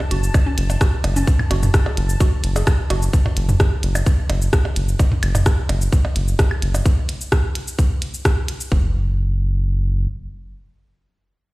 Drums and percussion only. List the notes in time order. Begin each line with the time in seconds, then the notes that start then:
0.00 percussion blips
0.11 closed hi-hat
0.23 shaker
0.34 kick, claves, percussion blips, shaker
0.58 closed hi-hat
0.70 percussion blips, shaker
0.81 kick, cross-stick, shaker
1.04 closed hi-hat, percussion blips
1.16 shaker
1.27 kick, shaker
1.39 mid tom, claves
1.51 closed hi-hat, percussion blips
1.63 mid tom, shaker
1.74 kick, cross-stick, shaker
1.86 percussion blips
1.97 closed hi-hat
2.09 shaker
2.20 kick, percussion blips, shaker
2.44 closed hi-hat
2.56 percussion blips, shaker
2.67 kick, cross-stick, claves, shaker
2.90 closed hi-hat, percussion blips
3.02 shaker
3.13 kick, shaker
3.26 mid tom, percussion blips
3.37 closed hi-hat
3.49 mid tom, shaker
3.60 kick, cross-stick, percussion blips, shaker
3.83 closed hi-hat
3.95 claves, percussion blips, shaker
4.06 kick, shaker
4.30 closed hi-hat, percussion blips
4.42 shaker
4.53 kick, cross-stick, shaker
4.65 percussion blips
4.76 closed hi-hat
4.88 shaker
4.99 kick, percussion blips, shaker
5.12 mid tom
5.23 closed hi-hat, claves
5.35 mid tom, percussion blips, shaker
5.46 kick, cross-stick, shaker
5.69 closed hi-hat, percussion blips
5.82 shaker
5.92 kick, shaker
6.05 percussion blips
6.16 closed hi-hat
6.28 shaker
6.39 kick, cross-stick, percussion blips, shaker
6.51 claves
6.62 closed hi-hat
6.74 percussion blips, shaker
6.86 kick, shaker
7.09 closed hi-hat
7.21 shaker
7.32 kick, cross-stick, shaker
7.55 closed hi-hat
7.68 shaker
7.79 kick, shaker
8.02 closed hi-hat
8.14 shaker
8.25 kick, cross-stick, shaker
8.48 closed hi-hat
8.61 shaker
8.72 kick